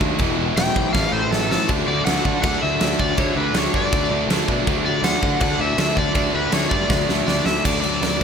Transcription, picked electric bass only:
0.01 0.13 D#2 medium
0.20 0.32 E1 loud
0.37 0.49 E1 loud
0.57 0.69 E1 medium
0.76 0.88 B1 medium
0.94 1.06 A1 loud
1.13 1.25 A1 medium
1.31 1.56 A1 medium
1.69 1.82 D2 medium
1.88 2.01 D2 medium
2.07 2.19 D2 medium
2.25 2.38 D3 medium
2.43 2.56 D2 medium
2.63 2.75 D2 medium
2.81 2.94 D2 loud
3.00 3.12 D2 loud
3.18 3.30 D2 medium
3.36 3.49 D2 loud
3.54 3.67 D2 medium
3.74 3.87 G2 medium
3.93 4.05 D2 medium
4.10 4.23 D2 loud
4.28 4.41 D2 loud
4.48 4.61 B2 medium
4.67 4.80 D2 loud
4.84 4.97 D2 medium
5.03 5.16 D2 loud
5.23 5.35 D3 medium
5.41 5.54 D2 loud
5.59 5.72 D2 medium
5.78 5.91 D2 loud
5.97 6.09 D2 loud
6.15 6.28 D2 loud
6.34 6.47 D2 loud
6.53 6.65 D2 medium
6.71 6.84 G2 medium
6.89 7.02 D2 loud
7.09 7.21 D2 medium
7.28 7.40 D2 medium
7.46 7.59 D2 medium
7.65 7.82 D2 medium
7.84 8.01 D2 medium
8.02 8.19 D2 medium

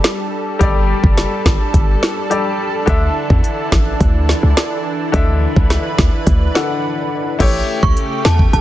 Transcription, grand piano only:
0.00 0.56 G3 medium
0.00 0.57 G4 medium
0.00 0.57 A4 medium
0.00 0.58 D5 medium
0.59 2.27 G3 medium
0.59 2.27 G4 medium
0.59 2.28 A4 medium
0.59 2.28 D5 medium
2.30 2.87 G3 medium
2.30 2.87 G4 medium
2.30 2.87 A4 medium
2.30 2.88 D5 medium
2.86 5.09 D3 medium
2.86 5.10 D4 medium
2.86 5.10 A4 medium
2.86 5.11 E5 medium
5.12 6.52 D3 medium
5.12 6.52 D4 medium
5.12 6.53 A4 medium
5.12 6.53 E5 medium
6.54 7.40 D3 medium
6.54 7.40 D4 medium
6.54 7.40 A4 medium
6.54 7.41 F#5 medium
7.39 8.61 A3 medium
7.39 8.61 E4 medium
7.39 8.61 G4 medium
7.39 8.61 C#5 medium

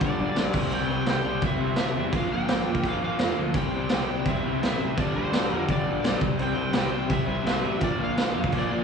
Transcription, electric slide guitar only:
0.02 0.51 D5 medium
0.75 1.06 G5 loud
1.10 1.42 G5 loud
1.46 1.79 E5 medium
1.80 2.15 E5 loud
2.17 2.32 F5 medium
2.33 2.86 G5 loud
2.89 3.03 F5 loud
3.05 3.36 F5 loud
3.56 3.92 G5 loud
3.94 4.25 G5 loud
4.29 4.64 E5 loud
4.66 4.99 E5 loud
5.00 5.16 D5 medium
5.16 5.65 C5 medium
5.70 6.19 D5 medium
6.43 6.77 G5 loud
6.79 7.13 G5 loud
7.11 7.46 E5 medium
7.47 7.83 E5 medium
7.84 8.01 D5 medium
8.04 8.51 F5 medium
8.59 8.84 D5 medium

